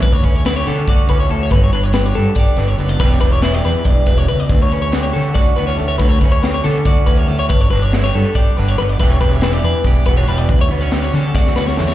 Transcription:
<<
  \new Staff \with { instrumentName = "Clean electric guitar" } { \time 7/8 \key d \major \tempo 4 = 140 b'16 cis''16 b'16 cis''16 b'16 cis''16 a'8 d''8 b'16 cis''16 a'16 cis''16 | b'16 cis''16 b'16 cis''16 b'16 cis''16 a'8 d''8 b'16 cis''16 b'16 d''16 | b'16 cis''16 b'16 cis''16 b'16 d''16 b'8 d''8 b'16 cis''16 b'16 d''16 | b'16 cis''16 b'16 cis''16 b'16 cis''16 a'8 d''8 b'16 cis''16 a'16 cis''16 |
b'16 cis''16 b'16 cis''16 b'16 cis''16 a'8 d''8 b'16 cis''16 a'16 cis''16 | b'16 cis''16 b'16 cis''16 b'16 cis''16 a'8 d''8 b'16 cis''16 b'16 d''16 | b'16 cis''16 b'16 cis''16 b'16 d''16 b'8 d''8 b'16 cis''16 b'16 d''16 | b'16 cis''16 b'16 cis''16 b'16 cis''16 a'8 d''8 b'16 cis''16 a'16 cis''16 | }
  \new Staff \with { instrumentName = "Clean electric guitar" } { \time 7/8 \key d \major << { r8 cis'8 e'16 g'16 b16 cis'16 fis'8 cis'8 a8 | r8 d'8 g'8 d'8 g'8 d'8 b8 | <e g d' g'>8 d'8 e'16 g'16 d'2 | r8 cis'8 g'8 cis'8 fis'8 b16 cis'16 a8 |
r8 cis'8 g'8 b16 cis'16 fis'8 cis'8 a8 | r8 d'8 e'16 g'16 b16 d'16 g'8 d'8 b8 | <e g d' g'>8 d'8 e'16 g'16 d'8 g'8 b16 d'16 g8 | r8 b16 cis'16 g'8 cis'8 fis'8 cis'8 a8 | } \\ { d,4 d4. a,4 | g,4 d4. d4 | e,4 e4 g,8 fis,8 e,8 | d,4 d4. a,4 |
d,4 d4. a,4 | g,4 d4. d4 | e,4 e4. b,4 | d,4 d4. a,4 | } >> }
  \new Staff \with { instrumentName = "Fingered electric bass" } { \clef bass \time 7/8 \key d \major d,8 d,4 d16 r16 d,16 r16 d,8 d,8 | g,,8 g,,4 g,16 r16 g,,16 r16 g,,8 fis,,8 | e,,8 e,,4 e,16 r16 e,,16 r16 e,,8 cis,8 | d,8 d,4 d16 r16 d,16 r16 d,8 d,8 |
d,8 d,4 d16 r16 d,16 r16 d,8 d,8 | g,,8 g,,4 g,16 r16 g,,16 r16 g,,8 g,,8 | e,,8 e,,4 e,16 r16 e,,16 r16 e,,8 e,,8 | d,8 d,4 d16 r16 d,16 r16 d,8 e,8 | }
  \new DrumStaff \with { instrumentName = "Drums" } \drummode { \time 7/8 <hh bd>8 <hh bd>8 <hh sn>8 <hh sn>8 <hh bd>8 <hh bd>8 hh8 | <hh bd>8 hh8 <hh sn>8 hh8 <hh bd sn>8 <hh sn>8 hh8 | <hh bd>8 <hh bd sn>8 <hh sn>8 <hh sn>8 <hh bd>8 <hh bd sn>8 hh8 | <hh bd>8 hh8 <hh sn>8 hh8 <hh bd sn>8 hh8 hh8 |
<hh bd>8 <hh bd sn>8 <hh sn>8 <hh sn>8 <hh bd>8 <hh bd>8 hh8 | <hh bd>8 hh8 <hh sn>8 hh8 <hh bd>8 hh8 hh8 | <hh bd>8 <hh bd>8 <hh sn>8 hh8 <hh bd>8 <hh bd>8 hh8 | <hh bd>8 hh8 <hh sn>8 <hh sn>8 <bd sn>16 sn16 sn16 sn16 sn16 sn16 | }
>>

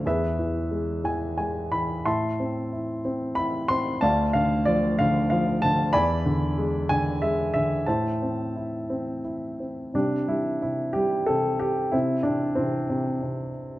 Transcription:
<<
  \new Staff \with { instrumentName = "Grand piano" } { \time 3/4 \key a \minor \tempo 4 = 92 << { e''4. gis''8 gis''8 b''8 | c'''4. r8 b''8 c'''8 | a''8 f''8 d''8 f''8 f''8 a''8 | b''4. gis''8 e''8 e''8 |
a''2 r4 | \key c \major d'8 e'8 e'8 g'8 a'8 g'8 | e'8 d'8 c'4. r8 | } \\ { <gis' b'>4. r4. | <e'' a''>4. r4. | <d'' f''>4. r4. | <d'' gis''>4. r4. |
<c'' e''>2 r4 | g4. r4. | c'4 e4. r8 | } >> }
  \new Staff \with { instrumentName = "Grand piano" } { \clef bass \time 3/4 \key a \minor e,8 e8 gis8 e8 gis8 e8 | a,8 c'8 e'8 c'8 e'8 c'8 | d,8 d8 f8 d8 f8 d8 | e,8 d8 gis8 d8 gis8 d8 |
a,8 c'8 e'8 c'8 e'8 c'8 | \key c \major c8 g8 c8 g8 c4 | c8 c8 c8 c8 c4 | }
>>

